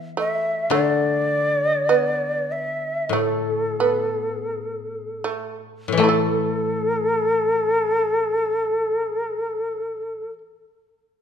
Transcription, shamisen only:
0, 0, Header, 1, 2, 480
1, 0, Start_track
1, 0, Tempo, 1136364
1, 305, Time_signature, 4, 2, 24, 8
1, 794, Tempo, 1242236
1, 1274, Tempo, 1376147
1, 1754, Tempo, 1503759
1, 3899, End_track
2, 0, Start_track
2, 0, Title_t, "Shamisen"
2, 0, Program_c, 0, 106
2, 0, Note_on_c, 0, 59, 52
2, 71, Note_off_c, 0, 59, 0
2, 73, Note_on_c, 0, 57, 45
2, 296, Note_off_c, 0, 57, 0
2, 301, Note_on_c, 0, 57, 60
2, 791, Note_off_c, 0, 57, 0
2, 798, Note_on_c, 0, 59, 49
2, 1275, Note_off_c, 0, 59, 0
2, 1276, Note_on_c, 0, 57, 53
2, 1508, Note_off_c, 0, 57, 0
2, 1511, Note_on_c, 0, 59, 45
2, 1990, Note_off_c, 0, 59, 0
2, 1992, Note_on_c, 0, 57, 42
2, 2229, Note_off_c, 0, 57, 0
2, 2233, Note_on_c, 0, 57, 40
2, 2245, Note_on_c, 0, 64, 40
2, 2261, Note_on_c, 0, 69, 38
2, 3603, Note_off_c, 0, 57, 0
2, 3616, Note_off_c, 0, 64, 0
2, 3632, Note_off_c, 0, 69, 0
2, 3899, End_track
0, 0, End_of_file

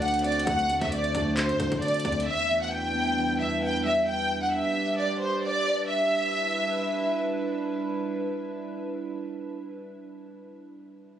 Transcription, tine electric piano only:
0, 0, Header, 1, 2, 480
1, 0, Start_track
1, 0, Key_signature, 1, "minor"
1, 0, Tempo, 451128
1, 499, Time_signature, 4, 2, 24, 8
1, 11913, End_track
2, 0, Start_track
2, 0, Title_t, "Tine electric piano"
2, 0, Program_c, 0, 4
2, 0, Control_c, 0, 64, 127
2, 0, Note_on_c, 0, 50, 81
2, 0, Note_on_c, 0, 62, 94
2, 20, Note_off_c, 0, 62, 0
2, 20, Note_on_c, 0, 62, 92
2, 259, Note_on_c, 0, 60, 87
2, 488, Note_off_c, 0, 50, 0
2, 500, Note_on_c, 0, 50, 89
2, 726, Note_off_c, 0, 50, 0
2, 739, Note_on_c, 0, 50, 82
2, 1205, Note_off_c, 0, 62, 0
2, 1218, Note_on_c, 0, 62, 90
2, 1447, Note_off_c, 0, 50, 0
2, 1459, Note_off_c, 0, 60, 0
2, 1459, Note_on_c, 0, 50, 91
2, 1687, Note_off_c, 0, 50, 0
2, 1700, Note_on_c, 0, 50, 89
2, 1927, Note_off_c, 0, 62, 0
2, 1940, Note_on_c, 0, 62, 90
2, 2180, Note_on_c, 0, 60, 92
2, 2419, Note_on_c, 0, 40, 89
2, 2420, Note_off_c, 0, 50, 0
2, 2420, Note_off_c, 0, 60, 0
2, 2420, Note_off_c, 0, 62, 0
2, 2434, Control_c, 0, 64, 0
2, 2612, Control_c, 0, 64, 127
2, 2648, Note_off_c, 0, 40, 0
2, 2661, Note_on_c, 0, 40, 87
2, 3140, Note_on_c, 0, 59, 94
2, 3366, Note_off_c, 0, 40, 0
2, 3379, Note_on_c, 0, 40, 90
2, 3607, Note_off_c, 0, 40, 0
2, 3620, Note_on_c, 0, 40, 78
2, 3847, Note_off_c, 0, 59, 0
2, 3860, Note_on_c, 0, 59, 83
2, 4099, Note_on_c, 0, 55, 86
2, 4351, Control_c, 0, 64, 0
2, 4820, Note_off_c, 0, 40, 0
2, 5060, Note_off_c, 0, 59, 0
2, 5299, Note_off_c, 0, 55, 0
2, 11913, End_track
0, 0, End_of_file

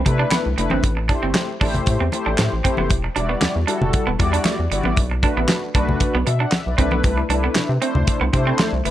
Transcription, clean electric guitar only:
0, 0, Header, 1, 3, 480
1, 0, Start_track
1, 0, Tempo, 517241
1, 774, Time_signature, 4, 2, 24, 8
1, 8264, End_track
2, 0, Start_track
2, 0, Title_t, "Clean electric guitar"
2, 0, Program_c, 0, 27
2, 180, Note_on_c, 0, 62, 80
2, 276, Note_off_c, 0, 62, 0
2, 294, Note_on_c, 0, 59, 76
2, 402, Note_off_c, 0, 59, 0
2, 660, Note_on_c, 0, 60, 82
2, 756, Note_off_c, 0, 60, 0
2, 1012, Note_on_c, 0, 62, 104
2, 1121, Note_off_c, 0, 62, 0
2, 1139, Note_on_c, 0, 60, 78
2, 1236, Note_off_c, 0, 60, 0
2, 1494, Note_on_c, 0, 62, 78
2, 1602, Note_off_c, 0, 62, 0
2, 1860, Note_on_c, 0, 60, 77
2, 1956, Note_off_c, 0, 60, 0
2, 2099, Note_on_c, 0, 62, 71
2, 2196, Note_off_c, 0, 62, 0
2, 2452, Note_on_c, 0, 60, 82
2, 2561, Note_off_c, 0, 60, 0
2, 2581, Note_on_c, 0, 59, 72
2, 2677, Note_off_c, 0, 59, 0
2, 2930, Note_on_c, 0, 62, 79
2, 3040, Note_off_c, 0, 62, 0
2, 3055, Note_on_c, 0, 59, 72
2, 3154, Note_off_c, 0, 59, 0
2, 3409, Note_on_c, 0, 62, 68
2, 3519, Note_off_c, 0, 62, 0
2, 3776, Note_on_c, 0, 59, 74
2, 3874, Note_off_c, 0, 59, 0
2, 4019, Note_on_c, 0, 62, 75
2, 4116, Note_off_c, 0, 62, 0
2, 4136, Note_on_c, 0, 57, 72
2, 4243, Note_off_c, 0, 57, 0
2, 4504, Note_on_c, 0, 59, 84
2, 4598, Note_off_c, 0, 59, 0
2, 4860, Note_on_c, 0, 62, 92
2, 4965, Note_off_c, 0, 62, 0
2, 4985, Note_on_c, 0, 59, 84
2, 5079, Note_off_c, 0, 59, 0
2, 5340, Note_on_c, 0, 62, 67
2, 5446, Note_off_c, 0, 62, 0
2, 5704, Note_on_c, 0, 59, 85
2, 5799, Note_off_c, 0, 59, 0
2, 5941, Note_on_c, 0, 62, 80
2, 6037, Note_off_c, 0, 62, 0
2, 6291, Note_on_c, 0, 60, 87
2, 6401, Note_off_c, 0, 60, 0
2, 6420, Note_on_c, 0, 59, 80
2, 6516, Note_off_c, 0, 59, 0
2, 6775, Note_on_c, 0, 62, 76
2, 6883, Note_off_c, 0, 62, 0
2, 6902, Note_on_c, 0, 59, 71
2, 6998, Note_off_c, 0, 59, 0
2, 7253, Note_on_c, 0, 60, 72
2, 7362, Note_off_c, 0, 60, 0
2, 7619, Note_on_c, 0, 59, 82
2, 7716, Note_off_c, 0, 59, 0
2, 7860, Note_on_c, 0, 60, 72
2, 7956, Note_off_c, 0, 60, 0
2, 7973, Note_on_c, 0, 57, 73
2, 8081, Note_off_c, 0, 57, 0
2, 8264, End_track
3, 0, Start_track
3, 0, Title_t, "Muted clean electric guitar strokes"
3, 53, Note_on_c, 9, 29, 42
3, 146, Note_off_c, 9, 29, 0
3, 536, Note_on_c, 9, 29, 49
3, 629, Note_off_c, 9, 29, 0
3, 900, Note_on_c, 9, 29, 46
3, 992, Note_off_c, 9, 29, 0
3, 1975, Note_on_c, 9, 29, 42
3, 2068, Note_off_c, 9, 29, 0
3, 2213, Note_on_c, 9, 29, 44
3, 2306, Note_off_c, 9, 29, 0
3, 2823, Note_on_c, 9, 29, 43
3, 2915, Note_off_c, 9, 29, 0
3, 3893, Note_on_c, 9, 29, 46
3, 3986, Note_off_c, 9, 29, 0
3, 4376, Note_on_c, 9, 29, 49
3, 4469, Note_off_c, 9, 29, 0
3, 4746, Note_on_c, 9, 29, 41
3, 4838, Note_off_c, 9, 29, 0
3, 5815, Note_on_c, 9, 29, 44
3, 5908, Note_off_c, 9, 29, 0
3, 6053, Note_on_c, 9, 29, 43
3, 6146, Note_off_c, 9, 29, 0
3, 6659, Note_on_c, 9, 29, 43
3, 6752, Note_off_c, 9, 29, 0
3, 7734, Note_on_c, 9, 29, 42
3, 7827, Note_off_c, 9, 29, 0
3, 8217, Note_on_c, 9, 29, 49
3, 8264, Note_off_c, 9, 29, 0
3, 8264, End_track
0, 0, End_of_file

